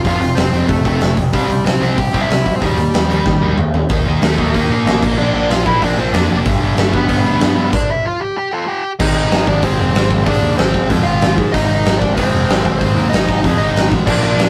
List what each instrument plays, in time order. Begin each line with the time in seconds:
0.05 picked electric bass F1, distorted electric guitar F2 C3 F3, lead electric guitar F5, kick, open hi-hat
0.09 lead electric guitar F4
0.20 picked electric bass F1, distorted electric guitar F2 C3, open hi-hat
0.35 picked electric bass F1, distorted electric guitar F2 C3, lead electric guitar C4 C5, snare, open hi-hat
0.51 picked electric bass F1, distorted electric guitar F2 C3 F3, open hi-hat
0.68 picked electric bass F2, distorted electric guitar F2 C3, lead electric guitar A3 A4, kick, open hi-hat
0.84 picked electric bass F1, distorted electric guitar F2 C3 F3, kick, open hi-hat
1.01 picked electric bass F1, distorted electric guitar F2 C3, snare, open hi-hat
1.17 picked electric bass F1, distorted electric guitar F2 C3, kick, open hi-hat
1.33 picked electric bass C2, distorted electric guitar C3 G3 C4, lead electric guitar G3 G4, kick, open hi-hat
1.48 picked electric bass C2, distorted electric guitar C3 G3, open hi-hat
1.64 picked electric bass C2, distorted electric guitar C3 G3, lead electric guitar C4 C5, snare, open hi-hat
1.80 picked electric bass C2, distorted electric guitar C3 G3 C4, open hi-hat
1.96 picked electric bass C2, distorted electric guitar C3 G3, lead electric guitar G4 G5, kick, open hi-hat
2.12 picked electric bass C2, distorted electric guitar C3 G3 C4, kick, open hi-hat
2.21 lead electric guitar E4 E5
2.28 picked electric bass C2, distorted electric guitar C3 G3, snare, open hi-hat
2.45 picked electric bass C2, distorted electric guitar C3 G3, kick, open hi-hat
2.55 lead electric guitar C4 C5
2.61 picked electric bass D#2, distorted electric guitar D#3 A#3 D#4, lead electric guitar G3 G4, kick, open hi-hat
2.77 picked electric bass D#2, distorted electric guitar D#3 A#3, open hi-hat
2.94 picked electric bass D#2, distorted electric guitar D#3 A#3, snare, open hi-hat
3.09 picked electric bass D#2, distorted electric guitar D#3 A#3 D#4, open hi-hat
3.25 distorted electric guitar D#3 A#3, picked electric bass D#3, kick, snare
3.41 picked electric bass D#2, distorted electric guitar D#3 A#3 D#4
3.57 picked electric bass D#2, distorted electric guitar D#3 A#3, mid tom
3.74 picked electric bass D#2, distorted electric guitar D#3 A#3, floor tom
3.89 picked electric bass D#2, distorted electric guitar D#3 A#3 D#4, kick, open hi-hat
4.06 picked electric bass D#2, distorted electric guitar D#3 A#3 D#4
4.21 picked electric bass D#2, distorted electric guitar D#3 A#3 D#4, lead electric guitar A3, snare, open hi-hat
4.26 lead electric guitar A4
4.38 picked electric bass D#2, distorted electric guitar D#3 A#3 D#4, lead electric guitar A#3, kick
4.43 lead electric guitar A4
4.54 picked electric bass D#2, distorted electric guitar D#3 A#3 D#4, lead electric guitar A#4, kick, open hi-hat
4.69 picked electric bass A#2, distorted electric guitar A#3 D#4
4.73 distorted electric guitar D#3
4.85 picked electric bass A1, distorted electric guitar D#3 A#3 D#4, snare, open hi-hat
5.03 picked electric bass A#1, distorted electric guitar A#2 F3 A#3, kick, crash
5.17 picked electric bass A#1, distorted electric guitar A#2 F3 A#3, lead electric guitar D4 D5
5.33 picked electric bass A#1, distorted electric guitar A#2 F3 A#3, lead electric guitar D4 D5
5.50 picked electric bass A#1, distorted electric guitar A#2 F3 A#3, lead electric guitar F4 F5, snare, open hi-hat
5.66 picked electric bass A#1, distorted electric guitar A#2 F3 A#3, lead electric guitar E4 E5, kick
5.82 picked electric bass A#1, distorted electric guitar A#2 F3 A#3, lead electric guitar D4 D5, kick, open hi-hat
5.97 picked electric bass A#1, distorted electric guitar A#2 F3 A#3, lead electric guitar C4 C5
6.13 picked electric bass F2, distorted electric guitar A#2 F3 A#3, lead electric guitar D4 D5, snare, open hi-hat
6.30 picked electric bass F1, distorted electric guitar A#2 F3 A#3
6.45 picked electric bass G1, distorted electric guitar G2 D3 G3, kick, open hi-hat
6.60 picked electric bass G1, distorted electric guitar G2 D3 G3
6.75 picked electric bass G1, distorted electric guitar G2 D3 G3, lead electric guitar A3, snare, open hi-hat
6.79 lead electric guitar A4
6.92 picked electric bass G1, distorted electric guitar G2 D3 G3, lead electric guitar B3 B4, kick
7.07 picked electric bass G1, distorted electric guitar G2 D3 G3, kick, open hi-hat
7.25 picked electric bass D2, distorted electric guitar G2 D3 G3
7.40 distorted electric guitar G2 D3 G3, picked electric bass G2, snare, open hi-hat
7.56 distorted electric guitar G2 D3 G3
7.73 lead electric guitar D4 D5, kick, crash
7.90 lead electric guitar E4 E5
8.05 lead electric guitar F4 F5
8.20 lead electric guitar G4 G5
8.38 lead electric guitar G4 G5
8.53 lead electric guitar F4 A4 F5 A5
8.67 lead electric guitar G4 G5
8.99 picked electric bass G#1, distorted electric guitar G#2 D#3 G#3, lead electric guitar D#4 D#5, kick, crash
9.14 picked electric bass G#1, lead electric guitar D#4 D#5
9.31 picked electric bass G#1, snare, open hi-hat
9.47 picked electric bass G#1, lead electric guitar D4 D5, kick
9.62 picked electric bass G#1, distorted electric guitar G#2 D#3 G#3, lead electric guitar C4 C5, kick, open hi-hat
9.80 picked electric bass F1
9.95 picked electric bass G#1, snare, open hi-hat
10.11 picked electric bass G#1, kick
10.25 picked electric bass G#1, distorted electric guitar G#2 D#3 G#3, lead electric guitar D4 D5, kick, open hi-hat
10.41 picked electric bass D#2
10.57 picked electric bass G#1, lead electric guitar C4 C5, snare, open hi-hat
10.74 picked electric bass G#1, kick
10.90 picked electric bass F2, distorted electric guitar G#2 D#3 G#3, kick, open hi-hat
11.03 picked electric bass G#1, lead electric guitar F4 F5
11.21 picked electric bass G#1, snare, open hi-hat
11.38 picked electric bass G#2, kick
11.52 picked electric bass G#1, distorted electric guitar G#2 D#3 G#3, lead electric guitar D#4 D#5, kick, open hi-hat
11.66 lead electric guitar D#4 D#5
11.70 picked electric bass G#1
11.86 picked electric bass G#1, snare, open hi-hat
11.98 picked electric bass G#1, lead electric guitar D4 D5, kick
12.14 picked electric bass G#1, distorted electric guitar G#2, lead electric guitar C4 C5, kick, open hi-hat
12.20 distorted electric guitar D#3 G#3
12.32 picked electric bass F1
12.48 picked electric bass G#1, snare, open hi-hat
12.65 picked electric bass G#1, kick
12.79 picked electric bass G#1, distorted electric guitar G#2 D#3, lead electric guitar C4 C5, kick, open hi-hat
12.83 distorted electric guitar G#3
12.95 picked electric bass D#2
13.09 picked electric bass G#1, lead electric guitar D#5, open hi-hat
13.14 lead electric guitar D#4, snare
13.29 picked electric bass G#1, kick
13.44 picked electric bass F2, distorted electric guitar G#2 D#3 G#3, kick, open hi-hat
13.57 picked electric bass G#1, lead electric guitar D#5
13.62 lead electric guitar D#4
13.74 picked electric bass G#1, snare, open hi-hat
13.92 picked electric bass A1, kick
14.06 picked electric bass A#1, distorted electric guitar A#2 F3 A#3, lead electric guitar D4 D5, kick, crash
14.20 picked electric bass A#1, lead electric guitar D5
14.25 lead electric guitar D4
14.37 picked electric bass A#1, snare, open hi-hat